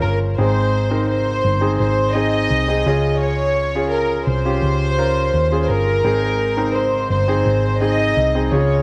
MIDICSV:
0, 0, Header, 1, 4, 480
1, 0, Start_track
1, 0, Key_signature, -4, "major"
1, 0, Tempo, 707297
1, 262, Time_signature, 4, 2, 24, 8
1, 5988, End_track
2, 0, Start_track
2, 0, Title_t, "Violin section"
2, 0, Program_c, 0, 48
2, 11, Note_on_c, 0, 70, 75
2, 121, Note_off_c, 0, 70, 0
2, 253, Note_on_c, 0, 72, 80
2, 710, Note_off_c, 0, 72, 0
2, 737, Note_on_c, 0, 72, 81
2, 1193, Note_off_c, 0, 72, 0
2, 1211, Note_on_c, 0, 72, 79
2, 1440, Note_off_c, 0, 72, 0
2, 1454, Note_on_c, 0, 75, 94
2, 2175, Note_on_c, 0, 73, 91
2, 2178, Note_off_c, 0, 75, 0
2, 2632, Note_off_c, 0, 73, 0
2, 2661, Note_on_c, 0, 70, 76
2, 2902, Note_off_c, 0, 70, 0
2, 2904, Note_on_c, 0, 72, 93
2, 3789, Note_off_c, 0, 72, 0
2, 3817, Note_on_c, 0, 72, 62
2, 3857, Note_on_c, 0, 70, 90
2, 3864, Note_off_c, 0, 72, 0
2, 4579, Note_on_c, 0, 72, 75
2, 4580, Note_off_c, 0, 70, 0
2, 4815, Note_off_c, 0, 72, 0
2, 4823, Note_on_c, 0, 72, 80
2, 5276, Note_off_c, 0, 72, 0
2, 5306, Note_on_c, 0, 75, 91
2, 5736, Note_off_c, 0, 75, 0
2, 5744, Note_on_c, 0, 75, 55
2, 5779, Note_on_c, 0, 73, 78
2, 5788, Note_off_c, 0, 75, 0
2, 5988, Note_off_c, 0, 73, 0
2, 5988, End_track
3, 0, Start_track
3, 0, Title_t, "Grand piano"
3, 0, Program_c, 1, 0
3, 0, Control_c, 1, 64, 127
3, 0, Note_on_c, 1, 61, 55
3, 0, Note_on_c, 1, 65, 50
3, 0, Note_on_c, 1, 68, 65
3, 0, Note_on_c, 1, 70, 63
3, 220, Note_off_c, 1, 61, 0
3, 221, Note_off_c, 1, 65, 0
3, 223, Note_off_c, 1, 70, 0
3, 260, Note_on_c, 1, 60, 56
3, 261, Note_on_c, 1, 44, 53
3, 261, Note_on_c, 1, 63, 54
3, 265, Note_off_c, 1, 68, 0
3, 265, Note_on_c, 1, 68, 62
3, 271, Control_c, 1, 64, 0
3, 370, Control_c, 1, 64, 127
3, 580, Note_off_c, 1, 60, 0
3, 581, Note_off_c, 1, 63, 0
3, 583, Note_off_c, 1, 68, 0
3, 614, Note_on_c, 1, 60, 58
3, 618, Note_on_c, 1, 63, 53
3, 620, Note_on_c, 1, 70, 63
3, 955, Note_off_c, 1, 44, 0
3, 1044, Note_off_c, 1, 60, 0
3, 1046, Note_off_c, 1, 63, 0
3, 1047, Note_off_c, 1, 70, 0
3, 1094, Note_on_c, 1, 60, 61
3, 1097, Note_on_c, 1, 63, 56
3, 1098, Note_on_c, 1, 68, 62
3, 1417, Note_off_c, 1, 60, 0
3, 1419, Note_off_c, 1, 63, 0
3, 1420, Note_off_c, 1, 68, 0
3, 1457, Note_on_c, 1, 60, 63
3, 1459, Note_on_c, 1, 63, 56
3, 1460, Note_on_c, 1, 68, 63
3, 1779, Note_off_c, 1, 60, 0
3, 1780, Note_off_c, 1, 63, 0
3, 1780, Note_off_c, 1, 68, 0
3, 1820, Note_on_c, 1, 60, 57
3, 1823, Note_on_c, 1, 63, 53
3, 1826, Note_on_c, 1, 68, 63
3, 1937, Note_off_c, 1, 68, 0
3, 1941, Note_off_c, 1, 60, 0
3, 1943, Note_off_c, 1, 63, 0
3, 1943, Note_on_c, 1, 61, 61
3, 1945, Note_on_c, 1, 65, 61
3, 1946, Note_on_c, 1, 49, 53
3, 1947, Note_on_c, 1, 68, 69
3, 1952, Control_c, 1, 64, 0
3, 2082, Control_c, 1, 64, 127
3, 2475, Note_off_c, 1, 61, 0
3, 2476, Note_off_c, 1, 65, 0
3, 2477, Note_off_c, 1, 68, 0
3, 2544, Note_on_c, 1, 61, 62
3, 2548, Note_on_c, 1, 65, 59
3, 2549, Note_on_c, 1, 68, 68
3, 2637, Note_off_c, 1, 49, 0
3, 2969, Note_off_c, 1, 61, 0
3, 2971, Note_off_c, 1, 65, 0
3, 2972, Note_off_c, 1, 68, 0
3, 3020, Note_on_c, 1, 61, 62
3, 3023, Note_on_c, 1, 65, 56
3, 3026, Note_on_c, 1, 67, 68
3, 3341, Note_off_c, 1, 61, 0
3, 3342, Note_off_c, 1, 65, 0
3, 3343, Note_off_c, 1, 67, 0
3, 3379, Note_on_c, 1, 61, 59
3, 3381, Note_on_c, 1, 65, 55
3, 3382, Note_on_c, 1, 70, 69
3, 3700, Note_off_c, 1, 61, 0
3, 3701, Note_off_c, 1, 65, 0
3, 3702, Note_off_c, 1, 70, 0
3, 3742, Note_on_c, 1, 61, 58
3, 3745, Note_on_c, 1, 65, 56
3, 3747, Note_on_c, 1, 68, 68
3, 4062, Note_off_c, 1, 61, 0
3, 4063, Note_off_c, 1, 65, 0
3, 4064, Note_off_c, 1, 68, 0
3, 4101, Note_on_c, 1, 60, 61
3, 4103, Note_on_c, 1, 63, 54
3, 4104, Note_on_c, 1, 44, 57
3, 4108, Note_on_c, 1, 68, 71
3, 4111, Control_c, 1, 64, 0
3, 4232, Control_c, 1, 64, 127
3, 4421, Note_off_c, 1, 60, 0
3, 4423, Note_off_c, 1, 63, 0
3, 4425, Note_off_c, 1, 68, 0
3, 4460, Note_on_c, 1, 60, 61
3, 4461, Note_on_c, 1, 63, 59
3, 4464, Note_on_c, 1, 70, 71
3, 4797, Note_off_c, 1, 44, 0
3, 4887, Note_off_c, 1, 60, 0
3, 4888, Note_off_c, 1, 63, 0
3, 4889, Note_off_c, 1, 70, 0
3, 4940, Note_on_c, 1, 60, 63
3, 4944, Note_on_c, 1, 63, 59
3, 4945, Note_on_c, 1, 68, 71
3, 5261, Note_off_c, 1, 60, 0
3, 5263, Note_off_c, 1, 63, 0
3, 5264, Note_off_c, 1, 68, 0
3, 5300, Note_on_c, 1, 60, 60
3, 5303, Note_on_c, 1, 63, 55
3, 5304, Note_on_c, 1, 68, 70
3, 5621, Note_off_c, 1, 60, 0
3, 5623, Note_off_c, 1, 63, 0
3, 5623, Note_off_c, 1, 68, 0
3, 5667, Note_on_c, 1, 60, 60
3, 5669, Note_on_c, 1, 63, 54
3, 5672, Note_on_c, 1, 68, 63
3, 5777, Note_off_c, 1, 68, 0
3, 5785, Note_off_c, 1, 60, 0
3, 5785, Note_on_c, 1, 61, 60
3, 5786, Note_off_c, 1, 63, 0
3, 5786, Note_on_c, 1, 49, 53
3, 5786, Note_on_c, 1, 65, 57
3, 5787, Note_on_c, 1, 68, 71
3, 5791, Control_c, 1, 64, 0
3, 5920, Control_c, 1, 64, 127
3, 5988, Note_off_c, 1, 49, 0
3, 5988, Note_off_c, 1, 61, 0
3, 5988, Note_off_c, 1, 65, 0
3, 5988, Note_off_c, 1, 68, 0
3, 5988, End_track
4, 0, Start_track
4, 0, Title_t, "Picked electric bass"
4, 0, Program_c, 2, 34
4, 20, Note_on_c, 2, 31, 69
4, 244, Note_off_c, 2, 31, 0
4, 260, Note_on_c, 2, 32, 78
4, 954, Note_off_c, 2, 32, 0
4, 981, Note_on_c, 2, 31, 77
4, 1205, Note_off_c, 2, 31, 0
4, 1222, Note_on_c, 2, 32, 76
4, 1675, Note_off_c, 2, 32, 0
4, 1701, Note_on_c, 2, 36, 76
4, 1925, Note_off_c, 2, 36, 0
4, 1943, Note_on_c, 2, 37, 76
4, 2876, Note_off_c, 2, 37, 0
4, 2899, Note_on_c, 2, 36, 82
4, 3124, Note_off_c, 2, 36, 0
4, 3139, Note_on_c, 2, 37, 85
4, 3594, Note_off_c, 2, 37, 0
4, 3621, Note_on_c, 2, 39, 78
4, 3845, Note_off_c, 2, 39, 0
4, 3860, Note_on_c, 2, 31, 78
4, 4084, Note_off_c, 2, 31, 0
4, 4100, Note_on_c, 2, 32, 82
4, 4795, Note_off_c, 2, 32, 0
4, 4820, Note_on_c, 2, 31, 83
4, 5045, Note_off_c, 2, 31, 0
4, 5061, Note_on_c, 2, 32, 90
4, 5515, Note_off_c, 2, 32, 0
4, 5543, Note_on_c, 2, 36, 76
4, 5766, Note_off_c, 2, 36, 0
4, 5782, Note_on_c, 2, 37, 83
4, 5988, Note_off_c, 2, 37, 0
4, 5988, End_track
0, 0, End_of_file